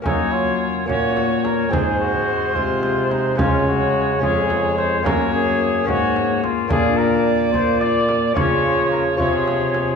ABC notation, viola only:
X:1
M:6/8
L:1/8
Q:3/8=72
K:Gblyd
V:1 name="Viola"
B,3 B,3 | A,6 | A,3 A,3 | B,3 B,3 |
B,6 | F,3 F,3 |]